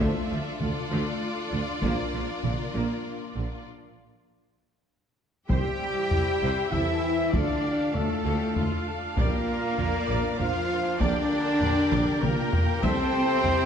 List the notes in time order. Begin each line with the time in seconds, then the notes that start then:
Already playing: E5
0.00 D2 D3 F3 A3 D4 F4 A4 D5
0.30 D2 D3 F3
0.60 D2 D3 D5, taiko mid
0.90 D2 D3 A3
1.52 D2 D3
1.82 A#1 A#2 F3 A#3 D4 A#4, taiko
2.13 A#1 A#2 F3
2.43 A#1 A#2 D3, taiko mid
2.74 A#1 A#2 A#3
3.35 A#1 A#2 D3
5.48 C2 G3 E4 G4 C5 E5 G5, taiko
6.10 C2 E4, taiko low
6.41 C2 C5
6.71 C2 E3 E4 G4 A4 E5, taiko low
7.02 G4
7.32 D2 D3 D4 F4 A4 D5 F5, taiko
7.64 G4
7.93 D2 A2 A3 D4 A4, taiko low
8.25 D2 G4 A4
8.56 D2 F4, taiko low
8.87 A4
9.16 A#1 A#2 A#3 G4 A#4 D5, taiko
9.48 F4
9.78 A#1 F4 D5, taiko low
10.09 A#1 D5
10.39 A#1 F3 F4 A#4 C5 F5, taiko low
11.00 A#1 D3 D4 G4 A#4 D5 G5, taiko
11.61 A#1 G4, taiko low
11.92 A#1 D5, taiko mid
12.22 A#1 A#2 A#3 A#4, taiko mid
12.53 taiko low
12.83 C2 C3 C4 E4 A4 C5 E5 G5, taiko
13.44 C2 G4, taiko low